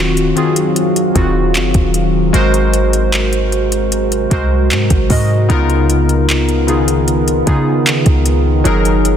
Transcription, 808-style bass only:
0.00 0.33 D#1 loud
1.16 1.57 D#1 loud
1.55 1.74 F#1 loud
1.75 2.32 D#1 loud
2.34 4.27 G#1 loud
4.31 4.72 C2 loud
4.71 4.90 G#2 loud
4.91 5.10 G#1 loud
5.10 5.48 G#2 loud
5.50 7.43 C#2 loud
7.47 8.04 C#3 loud
8.06 8.63 C#2 loud
8.65 9.17 F#1 loud

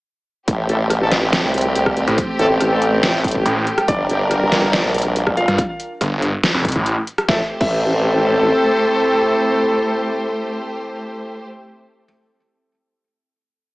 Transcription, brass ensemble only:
0.69 0.78 A3 medium
0.69 0.78 E4 medium
0.69 0.78 A4 medium
1.01 1.10 A3 medium
1.01 1.10 E4 medium
1.01 1.10 A4 loud
2.39 2.48 A3 loud
2.39 2.48 E4 loud
2.39 2.48 A4 loud
2.71 2.85 A3 medium
2.71 2.85 E4 medium
2.71 2.85 A4 loud
4.09 4.18 G3 medium
4.09 4.18 D4 medium
4.09 4.18 G4 medium
7.29 7.41 A3 medium
7.29 7.41 E4 medium
7.29 7.41 A4 loud
7.61 11.45 A3 loud
7.61 11.45 E4 medium
7.61 11.45 A4 loud

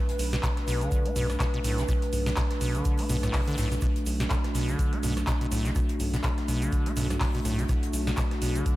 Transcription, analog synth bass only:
0.19 0.40 B1 loud
0.68 0.88 B1 medium
1.16 1.37 B1 loud
1.64 1.85 B1 loud
2.13 2.34 B1 loud
2.61 2.82 B1 medium
3.10 3.30 B1 loud
3.58 3.79 B1 medium
4.06 4.27 B1 loud
4.55 4.76 B1 medium
5.03 5.24 B1 loud
5.52 5.72 B1 medium
6.00 6.21 B1 loud
6.48 6.69 B1 medium
6.97 7.17 B1 loud
7.45 7.66 B1 loud
7.93 8.14 B1 loud
8.42 8.63 B1 medium

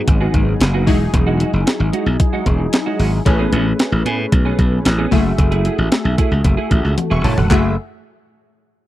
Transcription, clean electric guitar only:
0.07 muted clean electric guitar stroke soft
0.20 0.33 B3 medium
0.20 0.33 F#4 medium
0.20 0.33 G#4 loud
0.34 muted clean electric guitar stroke soft
0.47 muted clean electric guitar stroke soft
0.60 muted clean electric guitar stroke soft
0.74 0.87 B3 medium
0.74 0.87 F#4 medium
0.74 0.88 G#4 medium
0.87 0.99 G#3 medium
0.87 0.99 D#4 medium
0.87 0.99 F#4 medium
1.00 muted clean electric guitar stroke soft
1.14 muted clean electric guitar stroke soft
1.27 1.39 G#3 medium
1.27 1.39 D#4 medium
1.27 1.40 F#4 medium
1.40 1.52 G#3 medium
1.40 1.52 D#4 medium
1.40 1.52 F#4 medium
1.53 muted clean electric guitar stroke soft
1.66 muted clean electric guitar stroke soft
1.79 muted clean electric guitar stroke medium
1.93 2.08 G#3 medium
1.93 2.06 D#4 medium
1.93 2.05 F#4 loud
2.06 muted clean electric guitar stroke soft
2.20 muted clean electric guitar stroke medium
2.33 2.45 G#3 medium
2.33 2.45 D#4 medium
2.33 2.46 F#4 medium
2.46 muted clean electric guitar stroke soft
2.60 muted clean electric guitar stroke medium
2.73 muted clean electric guitar stroke soft
2.86 2.98 G#3 medium
2.86 2.99 D#4 medium
2.86 2.99 F#4 medium
2.99 3.11 G#3 medium
2.99 3.11 D#4 medium
2.99 3.11 F#4 medium
3.13 muted clean electric guitar stroke medium
3.26 muted clean electric guitar stroke soft
3.39 3.51 B3 medium
3.39 3.52 C#4 medium
3.39 3.52 G#4 medium
3.52 3.64 B3 medium
3.52 3.64 C#4 medium
3.52 3.64 G#4 medium
3.66 muted clean electric guitar stroke medium
3.79 muted clean electric guitar stroke soft
3.92 muted clean electric guitar stroke soft
4.06 4.20 B3 medium
4.06 4.19 C#4 medium
4.06 4.18 G#4 loud
4.19 muted clean electric guitar stroke soft
4.32 muted clean electric guitar stroke soft
4.45 4.58 B3 medium
4.45 4.58 C#4 medium
4.45 4.58 G#4 loud
4.59 muted clean electric guitar stroke soft
4.72 muted clean electric guitar stroke soft
4.85 muted clean electric guitar stroke soft
4.98 5.11 B3 medium
4.98 5.12 C#4 medium
4.98 5.11 G#4 medium
5.11 5.23 A3 medium
5.11 5.23 E4 medium
5.11 5.24 G#4 medium
5.38 muted clean electric guitar stroke soft
5.51 5.64 A3 medium
5.51 5.64 E4 medium
5.51 5.64 G#4 medium
5.65 5.76 A3 medium
5.65 5.77 E4 medium
5.65 5.77 G#4 medium
5.78 muted clean electric guitar stroke soft
5.91 muted clean electric guitar stroke soft
6.05 muted clean electric guitar stroke medium
6.18 6.33 A3 medium
6.18 6.31 E4 medium
6.18 6.30 G#4 loud
6.31 muted clean electric guitar stroke medium
6.44 muted clean electric guitar stroke soft
6.57 6.70 A3 medium
6.57 6.70 E4 medium
6.57 6.70 G#4 medium
6.71 muted clean electric guitar stroke soft
6.84 muted clean electric guitar stroke soft
6.97 muted clean electric guitar stroke soft
7.10 7.23 A3 medium
7.10 7.23 E4 medium
7.10 7.24 G#4 medium
7.24 7.36 A3 medium
7.24 7.36 E4 medium
7.24 7.36 G#4 medium
7.37 muted clean electric guitar stroke medium
7.50 7.66 A3 medium
7.50 7.67 E4 medium
7.50 7.67 G#4 medium

